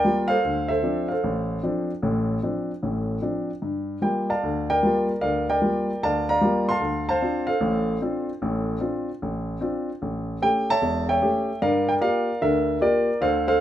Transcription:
Already playing: A#4 D5 F5 G5
0.04 G3 A#3 F4
0.28 A4 C5 F5
0.44 D2
0.68 A4 C5 E5
0.83 F3 C4 D4
1.08 A4 C5 F5
1.24 A1
1.63 F3 C4 D4
2.02 A1 A2
2.43 F3 C4 D4
2.83 A1 A2
3.22 F3 C4 D4
3.62 G2
4.02 G3 A#3 F4 G5
4.30 D5 F5 A5
4.43 D2
4.70 A#4 D5 G5
4.83 G3 A#3 F4
5.21 D2 A#4 D5 F5
5.50 A#4 D5 G5
5.62 G3 A#3 F4
6.03 D2 D5 F5 A5
6.29 D5 F5 A#5
6.41 G3 A#3 F4
6.69 F5 A5 C6
6.80 D2
7.09 C5 F5 A5
7.22 C4 D4 F4
7.47 A4 C5 F5
7.61 A1 A2
8.02 C4 D4 F4
8.42 A1 A2
8.80 C4 D4 F4
9.22 A1
9.61 C4 D4 F4
10.02 A1
10.42 A3 C#4 G4 G5
10.70 C#5 E5 A5
10.82 E1 E2
11.09 C#5 E5 G5
11.22 A3 C#4 G4
11.62 G2 A#4 D5 F5
11.89 G5
12.01 A#3 F4 G4 A#4 D5 F5
12.42 D2 D3 A#4 E5
12.80 A#3 F4 G4 A#4 D5
13.21 D2 D3 A4 C5 F5
13.48 A4 C5 F5

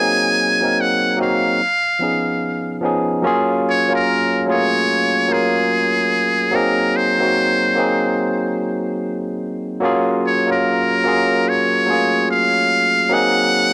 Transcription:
Already playing: F#3 A#3 C4 D#4 G#5
0.00 G#4
0.61 F#3 A#3 C4 D#4
0.65 A#4
0.81 F#5
1.17 F#3 A#3 C4 D#4
1.21 F#4 F5
1.99 F3 B3 C#4 D#4
2.03 G#4
2.81 F3 B3 C#4 D#4
2.86 G#4
3.22 F#3 A#3 C#4 F4
3.27 G#4
3.69 C#5
3.88 F#3 A#3 C#4 F4
3.93 A#4
4.46 F#3 A3 C#4 F4
4.50 A#3 G#4 C#5
5.28 F#3 A#3 C#4 F4
5.32 G#4 A#4
6.51 F#3 A#3 C4 D#4 A#4
6.56 G#4
6.96 C5
7.19 F#3 A#3 C4 D#4
7.23 F#4
7.75 F#3 A#3 C4 D#4
7.80 G#4
9.80 F#3 A#3 C#4 F4
9.85 G#4
10.26 C#5
10.47 F#3 A#3 C#4 F4
10.51 A#4
11.04 F#3 A#3 C#4 F4
11.08 G#4
11.49 C#5
11.86 F#3 A3 C#4 F4
11.90 A#3 G#4
12.30 F5
13.09 F#3 A#3 C4 D#4 G#4 F#5

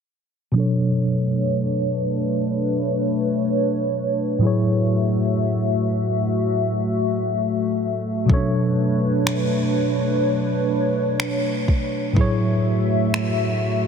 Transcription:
0.52 B2 F#3 A3 D4 B4 C#5
0.58 A4 C#5
2.49 C#5
4.39 A2 F#3 A3 E4 F#4 E5
4.45 G#4 C#5
8.26 B2 F#3 C#4 D4 B4 C#5, kick
8.32 A4 C#5
8.36 D4
9.27 finger snap
11.20 finger snap
11.68 kick
12.13 A2 F#3 A3 E4 F#4 E5, kick
12.19 G#4 C#5
13.14 finger snap

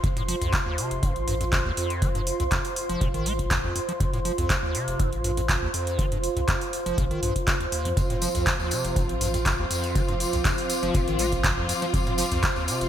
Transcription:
Already playing: F4 C5 C6
0.04 F1 F2, kick, closed hi-hat
0.17 A2, closed hi-hat
0.28 F3, open hi-hat
0.41 C2 F2, closed hi-hat
0.53 D#2, kick, clap, closed hi-hat
0.66 D#2
0.78 C3, open hi-hat
0.91 F1, closed hi-hat
1.03 D#1 G2, kick, closed hi-hat
1.16 A1, closed hi-hat
1.28 G2, open hi-hat
1.41 F2, closed hi-hat
1.52 F2, kick, clap, closed hi-hat
1.65 D#2
1.77 F2, open hi-hat
1.90 closed hi-hat
2.02 F1 F3, kick, closed hi-hat
2.15 G2, closed hi-hat
2.27 open hi-hat
2.40 C2 F2, closed hi-hat
2.52 F2, kick, clap, closed hi-hat
2.65 open hi-hat
2.76 open hi-hat
2.89 F1 F3, closed hi-hat
3.01 D#1 A2, kick, closed hi-hat
3.14 A1 D#3, closed hi-hat
3.26 A3, open hi-hat
3.39 kick, closed hi-hat
3.51 F2, kick, clap, closed hi-hat
3.64 F2
3.76 F2, open hi-hat
3.89 F3, closed hi-hat
4.00 F1 F2, kick, closed hi-hat
4.13 A2, closed hi-hat
4.25 F3, open hi-hat
4.38 C2 F2, closed hi-hat
4.50 D#2, kick, clap, closed hi-hat
4.63 D#2
4.75 C3, open hi-hat
4.88 F1, closed hi-hat
5.00 D#1 G2, kick, closed hi-hat
5.13 A1, closed hi-hat
5.24 G2, open hi-hat
5.37 F2, closed hi-hat
5.49 F2, kick, clap, closed hi-hat
5.62 D#2
5.74 F2, open hi-hat
5.87 closed hi-hat
5.99 F1 F3, kick, closed hi-hat
6.12 G2, closed hi-hat
6.24 open hi-hat
6.37 C2 F2, closed hi-hat
6.48 F2, kick, clap, closed hi-hat
6.61 open hi-hat
6.73 open hi-hat
6.86 F1 F3, closed hi-hat
6.98 A#1 A2, kick, closed hi-hat
7.11 D#3, closed hi-hat
7.23 A#1 G2, open hi-hat
7.36 kick, closed hi-hat
7.47 F1, kick, clap, closed hi-hat
7.61 D#2, closed hi-hat
7.72 D#2, open hi-hat
7.85 F2, closed hi-hat
7.97 F1 F2 F3 C4 F4, kick, closed hi-hat, tambourine
8.10 A2, closed hi-hat
8.22 F3, open hi-hat, tambourine
8.35 C2 F2, closed hi-hat, tambourine
8.47 D#2, kick, clap, closed hi-hat, tambourine
8.60 D#2, tambourine
8.71 C3, open hi-hat, tambourine
8.85 F1, closed hi-hat, tambourine
8.96 D#1 G2, kick, closed hi-hat, tambourine
9.09 A1, closed hi-hat
9.21 G2, open hi-hat, tambourine
9.34 F2, closed hi-hat, tambourine
9.46 F2, kick, clap, closed hi-hat, tambourine
9.59 D#2
9.71 F2, open hi-hat, tambourine
9.81 D6, closed hi-hat, tambourine
9.95 F1 F3, kick, closed hi-hat, tambourine
10.08 G2, closed hi-hat
10.20 open hi-hat, tambourine
10.33 C2 F2, closed hi-hat, tambourine
10.45 F2, kick, clap, closed hi-hat, tambourine
10.58 open hi-hat, tambourine
10.69 open hi-hat, tambourine
10.83 F1 F3, closed hi-hat, tambourine
10.94 D#1 A2, kick, closed hi-hat, tambourine
11.08 A1 D#3, closed hi-hat
11.19 A3, open hi-hat, tambourine
11.31 kick, closed hi-hat, tambourine
11.44 F2, kick, clap, closed hi-hat, tambourine
11.57 F2
11.69 F2, open hi-hat, tambourine
11.82 F3, closed hi-hat, tambourine
11.94 F1 F2, kick, closed hi-hat, tambourine
12.07 A2, closed hi-hat
12.18 F3, open hi-hat, tambourine
12.31 C2 F2, closed hi-hat, tambourine
12.43 D#2, kick, clap, closed hi-hat, tambourine
12.56 D#2, tambourine
12.68 C3, open hi-hat, tambourine
12.81 F1, closed hi-hat, tambourine

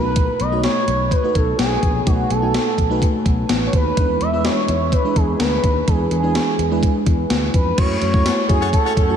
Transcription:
Already playing: B1 B2 A3 D#4 F#4 B4
0.16 kick, closed hi-hat
0.40 B1 D#5, closed hi-hat
0.51 A3 D#4 F#4 C#5
0.64 C#5, snare, closed hi-hat
0.88 B1, closed hi-hat
1.11 B4, kick, closed hi-hat
1.23 A3 D#4 F#4 B4
1.30 B4
1.35 B1 A4, kick, closed hi-hat
1.58 B1 G#4, snare, closed hi-hat
1.83 A#1 B2, kick, closed hi-hat
2.06 B1 A3 D#4 F#4 B4, kick, closed hi-hat
2.30 B1 A4, closed hi-hat
2.42 A3 D#4 F#4 G#5
2.54 snare, closed hi-hat
2.78 B1, kick, closed hi-hat
2.90 A3 D#4 F#4 B4
3.02 kick, closed hi-hat
3.26 B1, kick, closed hi-hat
3.49 A1, snare, closed hi-hat
3.67 C#5
3.73 D#2 B4, kick, closed hi-hat
3.97 E2 E3 G#3 D4 E4 B4, kick, closed hi-hat
4.21 E2 E5, closed hi-hat
4.33 G#3 D4 E4 B4
4.45 C#5, snare, closed hi-hat
4.68 E2, closed hi-hat
4.92 B4, kick, closed hi-hat
5.04 G#3 D4 E4 B4
5.16 E2 G#4, kick, closed hi-hat
5.40 D2 B4, snare, closed hi-hat
5.64 D#2, kick, closed hi-hat
5.88 E2 E3 G#3 D4 E4 G#4 B4, kick, closed hi-hat
6.11 E2 G#4, closed hi-hat
6.23 G#3 D4 E4 B4
6.35 snare, closed hi-hat
6.59 E2, closed hi-hat
6.71 G#3 D4 E4 B4
6.83 kick, closed hi-hat
7.06 E2, kick, closed hi-hat
7.30 D2, snare, closed hi-hat
7.54 F2 B4, kick, closed hi-hat
7.78 F#2 A3 E4 F#4 C#5, kick, closed hi-hat, crash
8.01 F#2 C#5, closed hi-hat
8.14 A3 E4 F#4 C#5, kick
8.26 A3 C#4 F#4 C#5, snare, closed hi-hat, tambourine
8.49 F#2 A3 E4 F#4 G#4 C#5, kick, closed hi-hat
8.61 A3 C#4 F#4 C#5
8.73 A4, kick, closed hi-hat
8.85 A3 C#4 F#4 C#5
8.97 F#2, kick, closed hi-hat
9.09 A3 E4 F#4 C#5

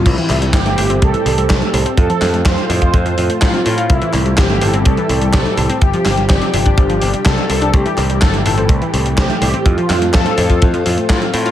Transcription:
0.06 C2 A2 E3 G3 A3 C4 E4 G4, kick, closed hi-hat, crash
0.18 E3, closed hi-hat
0.30 C2 A2, clap, open hi-hat
0.42 G3, closed hi-hat
0.53 G1 A2 G4, kick, snare, clap, closed hi-hat
0.66 A3, closed hi-hat
0.78 G1 A2 G4, open hi-hat
0.90 C4, closed hi-hat
1.02 C2 A2 A4, kick, closed hi-hat
1.14 E3, closed hi-hat
1.26 C2 A2, open hi-hat
1.38 G3, closed hi-hat
1.50 C2 A2, kick, snare, clap, closed hi-hat
1.62 A3, closed hi-hat
1.74 C2 A2, open hi-hat
1.86 C4, closed hi-hat
1.97 F2 A2 F4 A4, kick, closed hi-hat
2.10 F3, closed hi-hat
2.22 F2 A2, snare, clap, open hi-hat
2.34 A3, closed hi-hat
2.45 F2 A2 C5, kick, snare, clap, closed hi-hat
2.58 C4, closed hi-hat
2.70 F2 A2, open hi-hat
2.82 F4, kick, closed hi-hat
2.94 F2 A2, kick, closed hi-hat
3.06 F3, closed hi-hat
3.18 F2 A2, open hi-hat
3.30 A3, closed hi-hat
3.42 A2 F4, kick, snare, clap, closed hi-hat
3.54 C4, closed hi-hat
3.66 A2 F4, open hi-hat
3.78 F4, closed hi-hat
3.90 C2 A2 E3 G3 E4 G4, kick, closed hi-hat
4.02 E3, closed hi-hat
4.14 C2 A2, clap, open hi-hat
4.26 G3, closed hi-hat
4.38 G1 A2 G4, kick, snare, clap, closed hi-hat
4.50 A3, closed hi-hat
4.61 G1 A2 A4, open hi-hat
4.74 C4, closed hi-hat
4.85 C2 A2 A4, kick, closed hi-hat
4.97 E3, closed hi-hat
5.09 C2 A2, open hi-hat
5.22 G3, closed hi-hat
5.34 C2 A2, kick, snare, clap, closed hi-hat
5.46 A3, closed hi-hat
5.57 C2 A2, open hi-hat
5.70 C4, closed hi-hat
5.82 G1 C3 F3 G3 D4 G4, kick, closed hi-hat
5.94 F3, closed hi-hat
6.06 G1 C3, snare, clap, open hi-hat
6.18 G3, closed hi-hat
6.29 G1 C3 G4, kick, snare, clap, closed hi-hat
6.41 C4, closed hi-hat
6.54 G1 C3, open hi-hat
6.65 D4, kick, closed hi-hat
6.77 G1 C3, kick, closed hi-hat
6.90 F3, closed hi-hat
7.02 G1 C3, open hi-hat
7.14 G3, closed hi-hat
7.26 C2 C3 A4, kick, snare, clap, closed hi-hat
7.38 C4, closed hi-hat
7.50 C2 C3 A4, open hi-hat
7.62 D4, closed hi-hat
7.74 C2 A2 E3 A3 G4, kick, closed hi-hat
7.86 E3, closed hi-hat
7.98 C2 A2, clap, open hi-hat
8.10 G3, closed hi-hat
8.22 G1 A2 A4, kick, snare, clap, closed hi-hat
8.34 A3, closed hi-hat
8.46 G1 A2 A4, open hi-hat
8.58 C4, closed hi-hat
8.69 C2 A2, kick, closed hi-hat
8.82 E3, closed hi-hat
8.94 C2 A2, open hi-hat
9.06 G3, closed hi-hat
9.18 C2 A2 G4, kick, snare, clap, closed hi-hat
9.30 A3, closed hi-hat
9.42 C2 A2 G4, open hi-hat
9.54 C4, closed hi-hat
9.66 F2 A2 C4 F4, kick, closed hi-hat
9.78 F3, closed hi-hat
9.90 F2 A2, snare, clap, open hi-hat
10.02 A3, closed hi-hat
10.14 F2 A2 A4, kick, snare, clap, closed hi-hat
10.26 C4, closed hi-hat
10.38 F2 A2 A4, open hi-hat
10.50 F4, kick, closed hi-hat
10.62 F2 A2, kick, closed hi-hat
10.74 F3, closed hi-hat
10.86 F2 A2, open hi-hat
10.98 A3, closed hi-hat
11.09 A2 F4, kick, snare, clap, closed hi-hat
11.22 C4, closed hi-hat
11.34 A2 F4, open hi-hat
11.46 F4, closed hi-hat

